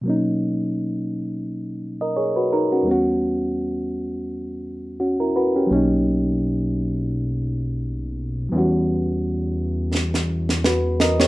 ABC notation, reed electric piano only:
X:1
M:4/4
L:1/16
Q:"Swing 16ths" 1/4=85
K:B
V:1 name="Reed electric piano"
z8 z3 [Ad] [Gc] [FB] [DA] [CF]- | [CF] z8 z3 [CF] [EA] [FB] [C=G]- | [C=G] z12 z3 | z12 [FB]2 [Ad] [=Gc] |]
V:2 name="Reed electric piano"
[B,,F,A,CD]12- [B,,F,A,CD]2 z2 | [E,,=G,B,CF]12- [E,,G,B,CF]2 z2 | [F,A,CD]16 | [F,=G,B,CF]16 |]